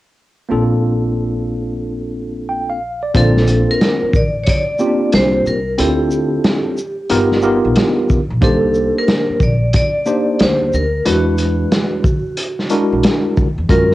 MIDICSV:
0, 0, Header, 1, 6, 480
1, 0, Start_track
1, 0, Key_signature, -2, "major"
1, 0, Tempo, 659341
1, 371, Time_signature, 4, 2, 24, 8
1, 10151, End_track
2, 0, Start_track
2, 0, Title_t, "Vibraphone"
2, 0, Program_c, 0, 11
2, 2308, Note_on_c, 0, 69, 91
2, 2699, Note_on_c, 0, 70, 89
2, 2704, Note_off_c, 0, 69, 0
2, 3028, Note_off_c, 0, 70, 0
2, 3028, Note_on_c, 0, 74, 98
2, 3209, Note_off_c, 0, 74, 0
2, 3229, Note_on_c, 0, 73, 75
2, 3258, Note_off_c, 0, 73, 0
2, 3271, Note_on_c, 0, 74, 105
2, 3712, Note_off_c, 0, 74, 0
2, 3746, Note_on_c, 0, 72, 92
2, 3962, Note_off_c, 0, 72, 0
2, 3983, Note_on_c, 0, 70, 82
2, 4223, Note_on_c, 0, 67, 74
2, 4224, Note_off_c, 0, 70, 0
2, 5628, Note_off_c, 0, 67, 0
2, 6145, Note_on_c, 0, 69, 86
2, 6503, Note_off_c, 0, 69, 0
2, 6541, Note_on_c, 0, 70, 93
2, 6866, Note_on_c, 0, 74, 93
2, 6869, Note_off_c, 0, 70, 0
2, 7097, Note_off_c, 0, 74, 0
2, 7106, Note_on_c, 0, 74, 109
2, 7589, Note_on_c, 0, 72, 86
2, 7593, Note_off_c, 0, 74, 0
2, 7804, Note_off_c, 0, 72, 0
2, 7824, Note_on_c, 0, 70, 88
2, 8064, Note_off_c, 0, 70, 0
2, 8068, Note_on_c, 0, 66, 77
2, 9470, Note_off_c, 0, 66, 0
2, 9979, Note_on_c, 0, 70, 80
2, 10151, Note_off_c, 0, 70, 0
2, 10151, End_track
3, 0, Start_track
3, 0, Title_t, "Tine electric piano"
3, 0, Program_c, 1, 4
3, 357, Note_on_c, 1, 58, 65
3, 363, Note_on_c, 1, 60, 58
3, 367, Note_on_c, 1, 62, 61
3, 372, Note_on_c, 1, 65, 60
3, 378, Note_on_c, 1, 69, 72
3, 1812, Note_on_c, 1, 79, 60
3, 1956, Note_off_c, 1, 79, 0
3, 1962, Note_on_c, 1, 77, 63
3, 2015, Note_off_c, 1, 58, 0
3, 2018, Note_off_c, 1, 60, 0
3, 2020, Note_off_c, 1, 62, 0
3, 2022, Note_off_c, 1, 65, 0
3, 2025, Note_off_c, 1, 69, 0
3, 2191, Note_off_c, 1, 77, 0
3, 2204, Note_on_c, 1, 74, 55
3, 2287, Note_on_c, 1, 58, 69
3, 2291, Note_on_c, 1, 60, 66
3, 2293, Note_on_c, 1, 62, 65
3, 2295, Note_on_c, 1, 65, 67
3, 2298, Note_on_c, 1, 72, 72
3, 2432, Note_off_c, 1, 74, 0
3, 3010, Note_off_c, 1, 58, 0
3, 3012, Note_off_c, 1, 60, 0
3, 3012, Note_off_c, 1, 62, 0
3, 3013, Note_off_c, 1, 65, 0
3, 3015, Note_off_c, 1, 72, 0
3, 3487, Note_on_c, 1, 58, 65
3, 3490, Note_on_c, 1, 60, 63
3, 3491, Note_on_c, 1, 61, 50
3, 3494, Note_on_c, 1, 65, 65
3, 3498, Note_on_c, 1, 67, 71
3, 3538, Note_on_c, 1, 62, 61
3, 3551, Note_off_c, 1, 61, 0
3, 4046, Note_off_c, 1, 58, 0
3, 4047, Note_off_c, 1, 60, 0
3, 4049, Note_off_c, 1, 65, 0
3, 4051, Note_off_c, 1, 67, 0
3, 4071, Note_off_c, 1, 62, 0
3, 4206, Note_on_c, 1, 60, 73
3, 4210, Note_on_c, 1, 62, 61
3, 4211, Note_on_c, 1, 64, 66
3, 4215, Note_on_c, 1, 65, 63
3, 4217, Note_on_c, 1, 69, 75
3, 4929, Note_off_c, 1, 60, 0
3, 4931, Note_off_c, 1, 62, 0
3, 4931, Note_off_c, 1, 64, 0
3, 4934, Note_off_c, 1, 65, 0
3, 4935, Note_off_c, 1, 69, 0
3, 5166, Note_on_c, 1, 59, 83
3, 5167, Note_on_c, 1, 63, 78
3, 5170, Note_on_c, 1, 65, 77
3, 5174, Note_on_c, 1, 67, 75
3, 5175, Note_on_c, 1, 70, 96
3, 5373, Note_off_c, 1, 59, 0
3, 5374, Note_off_c, 1, 63, 0
3, 5376, Note_off_c, 1, 65, 0
3, 5377, Note_off_c, 1, 67, 0
3, 5378, Note_off_c, 1, 70, 0
3, 5403, Note_on_c, 1, 59, 78
3, 5406, Note_on_c, 1, 63, 75
3, 5410, Note_on_c, 1, 65, 76
3, 5412, Note_on_c, 1, 67, 74
3, 5414, Note_on_c, 1, 70, 90
3, 5964, Note_off_c, 1, 59, 0
3, 5965, Note_off_c, 1, 63, 0
3, 5967, Note_off_c, 1, 65, 0
3, 5968, Note_off_c, 1, 67, 0
3, 5969, Note_off_c, 1, 70, 0
3, 6124, Note_on_c, 1, 58, 70
3, 6126, Note_on_c, 1, 62, 65
3, 6130, Note_on_c, 1, 63, 62
3, 6133, Note_on_c, 1, 67, 69
3, 6134, Note_on_c, 1, 72, 79
3, 6848, Note_off_c, 1, 58, 0
3, 6849, Note_off_c, 1, 62, 0
3, 6851, Note_off_c, 1, 63, 0
3, 6852, Note_off_c, 1, 67, 0
3, 6853, Note_off_c, 1, 72, 0
3, 7322, Note_on_c, 1, 58, 66
3, 7326, Note_on_c, 1, 62, 68
3, 7328, Note_on_c, 1, 63, 66
3, 7332, Note_on_c, 1, 67, 60
3, 7333, Note_on_c, 1, 72, 76
3, 7883, Note_off_c, 1, 58, 0
3, 7885, Note_off_c, 1, 62, 0
3, 7886, Note_off_c, 1, 63, 0
3, 7888, Note_off_c, 1, 67, 0
3, 7889, Note_off_c, 1, 72, 0
3, 8045, Note_on_c, 1, 56, 68
3, 8047, Note_on_c, 1, 62, 66
3, 8049, Note_on_c, 1, 64, 65
3, 8053, Note_on_c, 1, 66, 65
3, 8055, Note_on_c, 1, 71, 75
3, 8769, Note_off_c, 1, 56, 0
3, 8769, Note_off_c, 1, 62, 0
3, 8771, Note_off_c, 1, 64, 0
3, 8772, Note_off_c, 1, 66, 0
3, 8773, Note_off_c, 1, 71, 0
3, 9245, Note_on_c, 1, 56, 74
3, 9249, Note_on_c, 1, 62, 78
3, 9251, Note_on_c, 1, 64, 72
3, 9254, Note_on_c, 1, 66, 74
3, 9255, Note_on_c, 1, 70, 82
3, 9805, Note_off_c, 1, 56, 0
3, 9807, Note_off_c, 1, 62, 0
3, 9808, Note_off_c, 1, 64, 0
3, 9809, Note_off_c, 1, 66, 0
3, 9810, Note_off_c, 1, 70, 0
3, 9963, Note_on_c, 1, 56, 71
3, 9967, Note_on_c, 1, 61, 61
3, 9971, Note_on_c, 1, 65, 65
3, 9972, Note_on_c, 1, 66, 66
3, 9975, Note_on_c, 1, 70, 78
3, 10151, Note_off_c, 1, 56, 0
3, 10151, Note_off_c, 1, 61, 0
3, 10151, Note_off_c, 1, 65, 0
3, 10151, Note_off_c, 1, 66, 0
3, 10151, Note_off_c, 1, 70, 0
3, 10151, End_track
4, 0, Start_track
4, 0, Title_t, "Upright bass"
4, 0, Program_c, 2, 32
4, 373, Note_on_c, 2, 34, 70
4, 2263, Note_off_c, 2, 34, 0
4, 2294, Note_on_c, 2, 34, 101
4, 2633, Note_off_c, 2, 34, 0
4, 3011, Note_on_c, 2, 33, 82
4, 3219, Note_off_c, 2, 33, 0
4, 3737, Note_on_c, 2, 36, 85
4, 3942, Note_off_c, 2, 36, 0
4, 3975, Note_on_c, 2, 36, 79
4, 4181, Note_off_c, 2, 36, 0
4, 4215, Note_on_c, 2, 38, 88
4, 4630, Note_off_c, 2, 38, 0
4, 5172, Note_on_c, 2, 31, 89
4, 5512, Note_off_c, 2, 31, 0
4, 5565, Note_on_c, 2, 35, 81
4, 5640, Note_off_c, 2, 35, 0
4, 6045, Note_on_c, 2, 34, 85
4, 6130, Note_off_c, 2, 34, 0
4, 6130, Note_on_c, 2, 36, 100
4, 6471, Note_off_c, 2, 36, 0
4, 6847, Note_on_c, 2, 34, 74
4, 7057, Note_off_c, 2, 34, 0
4, 7574, Note_on_c, 2, 38, 89
4, 7781, Note_off_c, 2, 38, 0
4, 7815, Note_on_c, 2, 38, 82
4, 8021, Note_off_c, 2, 38, 0
4, 8056, Note_on_c, 2, 40, 94
4, 8470, Note_off_c, 2, 40, 0
4, 9409, Note_on_c, 2, 35, 76
4, 9482, Note_off_c, 2, 35, 0
4, 9886, Note_on_c, 2, 40, 84
4, 9960, Note_off_c, 2, 40, 0
4, 9972, Note_on_c, 2, 42, 98
4, 10151, Note_off_c, 2, 42, 0
4, 10151, End_track
5, 0, Start_track
5, 0, Title_t, "Muted upright bass strokes"
5, 2931, Note_on_c, 9, 29, 44
5, 3004, Note_off_c, 9, 29, 0
5, 6766, Note_on_c, 9, 29, 44
5, 6838, Note_off_c, 9, 29, 0
5, 10151, End_track
6, 0, Start_track
6, 0, Title_t, "Drums"
6, 2291, Note_on_c, 9, 36, 102
6, 2291, Note_on_c, 9, 42, 82
6, 2363, Note_off_c, 9, 42, 0
6, 2364, Note_off_c, 9, 36, 0
6, 2452, Note_on_c, 9, 38, 34
6, 2525, Note_off_c, 9, 38, 0
6, 2529, Note_on_c, 9, 42, 51
6, 2529, Note_on_c, 9, 82, 48
6, 2602, Note_off_c, 9, 42, 0
6, 2602, Note_off_c, 9, 82, 0
6, 2774, Note_on_c, 9, 42, 51
6, 2776, Note_on_c, 9, 38, 93
6, 2846, Note_off_c, 9, 42, 0
6, 2849, Note_off_c, 9, 38, 0
6, 3009, Note_on_c, 9, 36, 92
6, 3014, Note_on_c, 9, 82, 58
6, 3082, Note_off_c, 9, 36, 0
6, 3087, Note_off_c, 9, 82, 0
6, 3249, Note_on_c, 9, 42, 89
6, 3257, Note_on_c, 9, 36, 89
6, 3322, Note_off_c, 9, 42, 0
6, 3330, Note_off_c, 9, 36, 0
6, 3485, Note_on_c, 9, 82, 49
6, 3558, Note_off_c, 9, 82, 0
6, 3730, Note_on_c, 9, 42, 81
6, 3739, Note_on_c, 9, 38, 112
6, 3802, Note_off_c, 9, 42, 0
6, 3812, Note_off_c, 9, 38, 0
6, 3977, Note_on_c, 9, 82, 57
6, 4050, Note_off_c, 9, 82, 0
6, 4209, Note_on_c, 9, 42, 86
6, 4282, Note_off_c, 9, 42, 0
6, 4446, Note_on_c, 9, 82, 52
6, 4519, Note_off_c, 9, 82, 0
6, 4689, Note_on_c, 9, 42, 53
6, 4691, Note_on_c, 9, 38, 100
6, 4762, Note_off_c, 9, 42, 0
6, 4764, Note_off_c, 9, 38, 0
6, 4932, Note_on_c, 9, 82, 62
6, 5005, Note_off_c, 9, 82, 0
6, 5165, Note_on_c, 9, 42, 85
6, 5238, Note_off_c, 9, 42, 0
6, 5326, Note_on_c, 9, 38, 34
6, 5399, Note_off_c, 9, 38, 0
6, 5401, Note_on_c, 9, 82, 47
6, 5473, Note_off_c, 9, 82, 0
6, 5645, Note_on_c, 9, 42, 78
6, 5655, Note_on_c, 9, 38, 121
6, 5718, Note_off_c, 9, 42, 0
6, 5728, Note_off_c, 9, 38, 0
6, 5895, Note_on_c, 9, 82, 56
6, 5896, Note_on_c, 9, 36, 83
6, 5967, Note_off_c, 9, 82, 0
6, 5969, Note_off_c, 9, 36, 0
6, 6128, Note_on_c, 9, 36, 108
6, 6128, Note_on_c, 9, 42, 74
6, 6201, Note_off_c, 9, 36, 0
6, 6201, Note_off_c, 9, 42, 0
6, 6364, Note_on_c, 9, 82, 47
6, 6437, Note_off_c, 9, 82, 0
6, 6610, Note_on_c, 9, 42, 54
6, 6612, Note_on_c, 9, 38, 99
6, 6683, Note_off_c, 9, 42, 0
6, 6685, Note_off_c, 9, 38, 0
6, 6845, Note_on_c, 9, 36, 90
6, 6851, Note_on_c, 9, 82, 61
6, 6918, Note_off_c, 9, 36, 0
6, 6924, Note_off_c, 9, 82, 0
6, 7085, Note_on_c, 9, 42, 92
6, 7093, Note_on_c, 9, 36, 86
6, 7157, Note_off_c, 9, 42, 0
6, 7166, Note_off_c, 9, 36, 0
6, 7322, Note_on_c, 9, 82, 52
6, 7395, Note_off_c, 9, 82, 0
6, 7566, Note_on_c, 9, 42, 77
6, 7575, Note_on_c, 9, 38, 115
6, 7638, Note_off_c, 9, 42, 0
6, 7648, Note_off_c, 9, 38, 0
6, 7814, Note_on_c, 9, 82, 58
6, 7887, Note_off_c, 9, 82, 0
6, 8048, Note_on_c, 9, 42, 80
6, 8121, Note_off_c, 9, 42, 0
6, 8286, Note_on_c, 9, 42, 49
6, 8286, Note_on_c, 9, 82, 50
6, 8359, Note_off_c, 9, 42, 0
6, 8359, Note_off_c, 9, 82, 0
6, 8530, Note_on_c, 9, 42, 61
6, 8533, Note_on_c, 9, 38, 94
6, 8603, Note_off_c, 9, 42, 0
6, 8606, Note_off_c, 9, 38, 0
6, 8767, Note_on_c, 9, 36, 93
6, 8773, Note_on_c, 9, 82, 62
6, 8840, Note_off_c, 9, 36, 0
6, 8845, Note_off_c, 9, 82, 0
6, 9007, Note_on_c, 9, 42, 89
6, 9080, Note_off_c, 9, 42, 0
6, 9168, Note_on_c, 9, 38, 35
6, 9241, Note_off_c, 9, 38, 0
6, 9244, Note_on_c, 9, 42, 49
6, 9244, Note_on_c, 9, 82, 49
6, 9316, Note_off_c, 9, 42, 0
6, 9316, Note_off_c, 9, 82, 0
6, 9489, Note_on_c, 9, 42, 80
6, 9498, Note_on_c, 9, 38, 113
6, 9562, Note_off_c, 9, 42, 0
6, 9571, Note_off_c, 9, 38, 0
6, 9736, Note_on_c, 9, 82, 53
6, 9737, Note_on_c, 9, 36, 83
6, 9809, Note_off_c, 9, 82, 0
6, 9810, Note_off_c, 9, 36, 0
6, 9969, Note_on_c, 9, 36, 104
6, 9970, Note_on_c, 9, 42, 82
6, 10042, Note_off_c, 9, 36, 0
6, 10043, Note_off_c, 9, 42, 0
6, 10151, End_track
0, 0, End_of_file